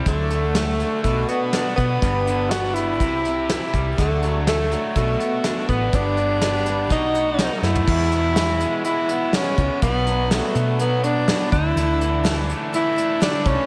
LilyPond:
<<
  \new Staff \with { instrumentName = "Tenor saxophone" } { \time 4/4 \key b \phrygian \tempo 4 = 123 a4 a4 a8 b4 b8~ | b4 fis'8 e'2 r8 | a4 a4 a4. b8 | d'2 dis'4. e'8~ |
\key e \mixolydian e'2 e'4 cis'4 | b4 a4 b8 d'4 e'8~ | e'4. r8 e'4 d'8 cis'8 | }
  \new Staff \with { instrumentName = "Twelve-string acoustic guitar" } { \time 4/4 \key b \phrygian <d fis a d' fis'>8 <a d' fis'>8 <fis a d' fis'>8 <a d' fis'>8 <b, fis b d' fis'>8 <b d' fis'>8 <fis b d' fis'>4 | <g, d g b d' g'>8 <g b d' g'>8 <g b d' g'>8 <g b d' g'>8 <c e c' e' g'>8 <c' e' g'>8 <e c' e' g'>4 | <d fis a d' fis'>8 <a d' fis'>8 <fis a d' fis'>8 <a d' fis'>8 <b, fis b d' fis'>8 <b d' fis'>8 <fis b d' fis'>4 | <g, d g b d' g'>8 <g b d' g'>8 <g b d' g'>8 <g b d' g'>8 <b, fis a dis' fis'>8 <a dis' fis'>8 <fis a dis' fis'>4 |
\key e \mixolydian <e gis b e' fis'>8 <b e' fis'>8 <e gis b e' fis'>4 <gis b e' fis'>8 <b e' fis'>8 <e gis b e' fis'>8 <b e' fis'>8 | <b, fis b d' fis'>8 <b d' fis'>8 <b, fis b d' fis'>4 <fis b d' fis'>8 <b d' fis'>8 <b, fis b d' fis'>8 <a d' a'>8 | <d e a d' a'>8 <a d' a'>8 <d e a d' a'>4 <e a d' a'>8 <a d' a'>8 <d e a d' a'>8 <a d' a'>8 | }
  \new Staff \with { instrumentName = "Overdriven electric guitar" } { \clef bass \time 4/4 \key b \phrygian d8 a8 a8 d8 b,8 fis'8 d'8 b8 | g,8 d8 b8 g8 c8 g'8 e'8 g8 | d8 fis8 a8 fis8 b,8 fis'8 d'8 b8 | g,8 d8 b8 g8 b,8 fis'8 dis'8 a8 |
\key e \mixolydian e,8 b,8 e8 gis8 e8 b8 gis8 e8 | b,8 fis8 fis8 b8 fis8 d'8 b8 d8 | d8 e8 e8 a8 e8 d'8 a8 e8 | }
  \new Staff \with { instrumentName = "Picked electric bass" } { \clef bass \time 4/4 \key b \phrygian d,2 b,,8 r4 b,8 | g,,2 c,4. c,8 | d,2 b,,8 r4 a,,8 | g,,2 b,,4. fis,8 |
\key e \mixolydian e,2 r4. cis,16 r16 | b,,4. b,2 d,8 | d,2 r4. c,16 r16 | }
  \new DrumStaff \with { instrumentName = "Drums" } \drummode { \time 4/4 <hh bd>8 hh8 <hh sn>8 hh8 <hh bd>8 hh8 <hh sn>8 <hh bd>8 | <hh bd>8 hh8 <hh sn>8 hh8 <hh bd>8 hh8 <hh sn>8 <hh bd>8 | <hh bd>8 hh8 <hh sn>8 hh8 <hh bd>8 hh8 <hh sn>8 <hh bd>8 | <hh bd>8 hh8 <hh sn>8 hh8 <hh bd>8 hh8 <hh sn>8 sn16 tomfh16 |
<cymc bd>8 hh8 <hh sn>8 hh8 hh8 hh8 <hh sn>8 <hh bd>8 | <hh bd>8 hh8 <hh sn>8 hh8 hh8 hh8 <hh sn>8 <hh bd>8 | hh8 hh8 <hh sn>8 hh8 hh8 hh8 <hh sn>8 <hh bd>8 | }
>>